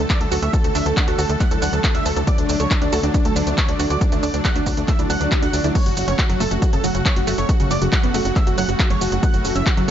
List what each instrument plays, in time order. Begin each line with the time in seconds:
Already playing: analog synth pad D3 F#3 A3
0.10 supersaw synth D5, grand piano D6, kick, clap, closed hi-hat, shaker
0.21 analog synth bass D2, supersaw synth A4, grand piano A5, closed hi-hat
0.32 analog synth bass D2, synth arpeggio sound F#4, supersaw synth A4, grand piano A5, open hi-hat, shaker
0.42 analog synth bass D2, synth arpeggio sound F#4, supersaw synth E5, grand piano E6, closed hi-hat, shaker
0.53 supersaw synth A4, grand piano A5, kick, closed hi-hat, shaker
0.64 analog synth bass D2, synth arpeggio sound A3, supersaw synth A4, grand piano A5, closed hi-hat, shaker
0.75 analog synth bass D2, synth arpeggio sound D4, supersaw synth E5, grand piano E6, open hi-hat, shaker
0.86 analog synth bass D2, synth arpeggio sound A3, supersaw synth A4, grand piano A5, closed hi-hat, shaker
0.97 synth arpeggio sound D4, supersaw synth F#5, grand piano F#6, kick, clap, closed hi-hat, shaker
1.08 analog synth bass D2, synth arpeggio sound F#4, supersaw synth A4, grand piano A5, closed hi-hat
1.19 analog synth bass D2, synth arpeggio sound F#4, supersaw synth A4, grand piano A5, open hi-hat, shaker
1.29 analog synth bass D2, supersaw synth A4, grand piano A5, closed hi-hat, shaker
1.40 synth arpeggio sound A3, supersaw synth F#5, grand piano F#6, kick, clap, closed hi-hat, shaker
1.51 analog synth bass D2, synth arpeggio sound E4, supersaw synth A4, grand piano A5, closed hi-hat, shaker
1.62 analog synth bass D2, synth arpeggio sound D4, supersaw synth F#5, grand piano F#6, open hi-hat, shaker
1.73 analog synth bass D2, supersaw synth A4, grand piano A5, closed hi-hat, shaker
1.84 kick, clap, closed hi-hat, shaker
1.95 analog synth bass D2, synth arpeggio sound D4, supersaw synth E5, grand piano E6, closed hi-hat
2.05 analog synth bass D2, supersaw synth A4, grand piano A5, open hi-hat, shaker
2.16 analog synth bass D2, synth arpeggio sound E4, supersaw synth A4, grand piano A5, closed hi-hat, shaker
2.27 synth arpeggio sound D4, supersaw synth D5, grand piano D6, kick, closed hi-hat, shaker
2.38 analog synth bass D2, supersaw synth D4, grand piano D5, closed hi-hat, shaker
2.49 analog synth bass D2, supersaw synth D4, grand piano D5, open hi-hat, shaker
2.60 analog synth bass D2, synth arpeggio sound A4, supersaw synth C#5, grand piano C#6, closed hi-hat, shaker
2.71 supersaw synth D4, synth arpeggio sound D5, grand piano D5, kick, clap, closed hi-hat, shaker
2.82 analog synth bass D2, synth arpeggio sound D4, supersaw synth D4, grand piano D5, closed hi-hat
2.92 analog synth bass D2, synth arpeggio sound F#4, supersaw synth A4, grand piano A5, open hi-hat, shaker
3.03 analog synth bass D2, supersaw synth D4, synth arpeggio sound F#4, grand piano D5, closed hi-hat, shaker
3.14 supersaw synth D4, synth arpeggio sound D4, grand piano D5, kick, closed hi-hat, shaker
3.25 analog synth bass D2, synth arpeggio sound A3, supersaw synth A4, grand piano A5, closed hi-hat, shaker
3.36 analog synth bass D2, synth arpeggio sound D4, supersaw synth D4, grand piano D5, open hi-hat, shaker
3.47 analog synth bass D2, synth arpeggio sound A3, supersaw synth D4, grand piano D5, closed hi-hat, shaker
3.58 supersaw synth C#5, grand piano C#6, kick, clap, closed hi-hat, shaker
3.69 analog synth bass D2, supersaw synth D4, grand piano D5, closed hi-hat
3.79 analog synth bass D2, supersaw synth D4, synth arpeggio sound F#4, grand piano D5, open hi-hat, shaker
3.90 analog synth bass D2, synth arpeggio sound F#4, supersaw synth D5, grand piano D6, closed hi-hat, shaker
4.01 supersaw synth D4, grand piano D5, kick, closed hi-hat, shaker
4.12 analog synth bass D2, synth arpeggio sound A3, supersaw synth D4, grand piano D5, closed hi-hat, shaker
4.23 analog synth bass D2, synth arpeggio sound D4, supersaw synth D5, grand piano D6, open hi-hat, shaker
4.34 analog synth bass D2, synth arpeggio sound A3, supersaw synth D4, grand piano D5, closed hi-hat, shaker
4.45 synth arpeggio sound D4, supersaw synth F#5, grand piano F#6, kick, clap, closed hi-hat, shaker
4.55 analog synth bass D2, supersaw synth D4, synth arpeggio sound F#4, grand piano D5, closed hi-hat, shaker
4.66 analog synth bass D2, supersaw synth D4, synth arpeggio sound F#4, grand piano D5, kick, open hi-hat, shaker
4.77 analog synth bass D2, supersaw synth D4, grand piano D5, closed hi-hat, shaker
4.88 synth arpeggio sound A3, supersaw synth E5, grand piano E6, kick, clap, closed hi-hat, swell, shaker
4.99 analog synth bass D2, supersaw synth D4, synth arpeggio sound E4, grand piano D5, closed hi-hat, shaker
5.10 analog synth bass D2, synth arpeggio sound D4, supersaw synth F#5, grand piano F#6, open hi-hat, shaker
5.21 analog synth bass D2, supersaw synth D4, grand piano D5, closed hi-hat, shaker
5.32 supersaw synth D4, grand piano D5, kick, clap, closed hi-hat, shaker
5.42 analog synth bass D2, synth arpeggio sound D4, supersaw synth F#5, grand piano F#6, closed hi-hat, shaker
5.53 analog synth bass D2, supersaw synth D4, grand piano D5, open hi-hat, shaker
5.64 analog synth bass D2, supersaw synth D4, synth arpeggio sound E4, grand piano D5, closed hi-hat, shaker
5.75 analog synth pad C#3 A3, synth arpeggio sound F#3, supersaw synth C#5, grand piano C#6, kick, closed hi-hat, crash, shaker
5.86 analog synth bass F#1, supersaw synth F#4, grand piano F#5, closed hi-hat, shaker
5.97 analog synth bass F#1, supersaw synth F#4, grand piano F#5, open hi-hat, shaker
6.08 analog synth bass F#1, synth arpeggio sound C#4, supersaw synth C#5, grand piano C#6, closed hi-hat, shaker
6.19 synth arpeggio sound F#4, supersaw synth F#4, grand piano F#5, kick, clap, closed hi-hat, shaker
6.29 analog synth bass F#1, synth arpeggio sound F#3, supersaw synth F#4, grand piano F#5, closed hi-hat
6.40 analog synth bass F#1, synth arpeggio sound A3, supersaw synth A4, grand piano A5, open hi-hat, shaker
6.51 analog synth bass F#1, synth arpeggio sound A3, supersaw synth F#4, grand piano F#5, closed hi-hat, shaker
6.62 synth arpeggio sound F#3, supersaw synth F#4, grand piano F#5, kick, closed hi-hat, shaker
6.73 analog synth bass F#1, synth arpeggio sound C#3, supersaw synth A4, grand piano A5, closed hi-hat, shaker
6.84 analog synth bass F#1, synth arpeggio sound F#3, supersaw synth F#4, grand piano F#5, open hi-hat, shaker
6.95 analog synth bass F#1, synth arpeggio sound C#3, supersaw synth F#4, grand piano F#5, closed hi-hat, shaker
7.05 supersaw synth C#5, grand piano C#6, kick, clap, closed hi-hat, shaker
7.16 analog synth bass F#1, supersaw synth F#4, grand piano F#5, closed hi-hat
7.27 analog synth bass F#1, synth arpeggio sound A3, supersaw synth F#4, grand piano F#5, open hi-hat, shaker
7.38 analog synth bass F#1, synth arpeggio sound A3, supersaw synth C#5, grand piano C#6, closed hi-hat, shaker
7.49 supersaw synth F#4, grand piano F#5, kick, closed hi-hat, shaker
7.60 analog synth bass F#1, synth arpeggio sound C#3, supersaw synth F#4, grand piano F#5, closed hi-hat, shaker
7.71 analog synth bass F#1, synth arpeggio sound F#3, supersaw synth D5, grand piano D6, open hi-hat, shaker
7.82 analog synth bass F#1, synth arpeggio sound C#3, supersaw synth F#4, grand piano F#5, closed hi-hat, shaker
7.92 synth arpeggio sound F#3, supersaw synth F#5, grand piano F#6, kick, clap, closed hi-hat, shaker
8.03 analog synth bass F#1, synth arpeggio sound B3, supersaw synth F#4, grand piano F#5, closed hi-hat
8.14 analog synth bass F#1, synth arpeggio sound A3, supersaw synth F#4, grand piano F#5, open hi-hat, shaker
8.25 analog synth bass F#1, supersaw synth F#4, grand piano F#5, closed hi-hat, shaker
8.36 synth arpeggio sound C#3, supersaw synth E5, grand piano E6, kick, clap, closed hi-hat, shaker
8.47 analog synth bass F#1, synth arpeggio sound F#3, supersaw synth F#4, grand piano F#5, closed hi-hat, shaker
8.58 analog synth bass F#1, synth arpeggio sound F#3, supersaw synth F#5, grand piano F#6, open hi-hat, shaker
8.68 analog synth bass F#1, supersaw synth F#4, grand piano F#5, closed hi-hat, shaker
8.79 supersaw synth F#4, grand piano F#5, kick, clap, closed hi-hat, shaker
8.90 analog synth bass F#1, synth arpeggio sound F#3, supersaw synth C#5, grand piano C#6, closed hi-hat
9.01 analog synth bass F#1, supersaw synth F#4, grand piano F#5, open hi-hat, shaker
9.12 analog synth bass F#1, synth arpeggio sound F#3, supersaw synth F#4, grand piano F#5, closed hi-hat, shaker
9.23 analog synth pad E3, synth arpeggio sound F#3, supersaw synth F#5, grand piano F#6, kick, closed hi-hat, shaker
9.34 analog synth bass F#1, supersaw synth F#4, grand piano F#5, closed hi-hat, shaker
9.45 analog synth bass F#1, supersaw synth F#4, grand piano F#5, open hi-hat, shaker
9.55 analog synth bass F#1, synth arpeggio sound C#4, supersaw synth E5, grand piano E6, closed hi-hat, shaker
9.66 synth arpeggio sound F#4, supersaw synth F#4, grand piano F#5, kick, clap, closed hi-hat, shaker
9.77 analog synth bass F#1, synth arpeggio sound F#3, supersaw synth F#4, grand piano F#5, closed hi-hat